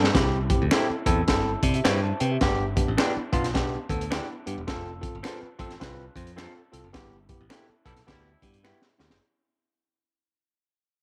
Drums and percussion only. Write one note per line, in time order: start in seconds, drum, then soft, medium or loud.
0.04 snare medium
0.15 kick loud
0.15 snare loud
0.15 closed hi-hat medium
0.50 kick loud
0.50 closed hi-hat medium
0.71 finger snap loud
0.71 snare loud
0.71 closed hi-hat medium
1.06 kick medium
1.06 closed hi-hat medium
1.28 kick medium
1.28 snare loud
1.28 closed hi-hat medium
1.63 kick medium
1.63 closed hi-hat medium
1.74 closed hi-hat soft
1.85 finger snap medium
1.85 snare loud
1.85 closed hi-hat medium
2.20 closed hi-hat medium
2.41 kick loud
2.41 snare loud
2.41 closed hi-hat medium
2.77 kick loud
2.77 closed hi-hat medium
2.98 finger snap medium
2.98 snare loud
2.98 closed hi-hat medium
3.33 kick medium
3.33 closed hi-hat medium
3.44 snare soft
3.44 closed hi-hat soft
3.55 kick medium
3.55 snare loud
3.55 closed hi-hat medium
3.89 kick medium
3.89 closed hi-hat medium
4.01 closed hi-hat medium
4.12 finger snap medium
4.12 snare loud
4.12 closed hi-hat medium
4.47 closed hi-hat medium
4.68 kick loud
4.68 snare loud
4.68 closed hi-hat medium
5.03 kick medium
5.03 closed hi-hat medium
5.24 finger snap loud
5.24 snare loud
5.24 closed hi-hat medium
5.59 kick medium
5.59 closed hi-hat medium
5.70 snare soft
5.70 closed hi-hat medium
5.81 kick medium
5.81 snare loud
5.81 closed hi-hat medium
6.16 kick medium
6.16 closed hi-hat medium
6.27 closed hi-hat soft
6.38 finger snap medium
6.38 snare loud
6.38 closed hi-hat medium
6.74 closed hi-hat medium
6.94 kick loud
6.94 snare loud
6.94 closed hi-hat medium
7.29 kick loud
7.29 closed hi-hat medium
7.50 finger snap medium
7.50 snare loud
7.50 closed hi-hat medium
7.86 kick medium
7.86 closed hi-hat medium
7.96 snare soft
7.96 closed hi-hat medium
8.08 kick medium
8.08 snare loud
8.08 closed hi-hat medium
8.42 kick medium
8.42 closed hi-hat medium
8.54 closed hi-hat medium
8.64 finger snap medium
8.64 snare medium
8.82 snare medium
8.99 snare medium
9.10 snare medium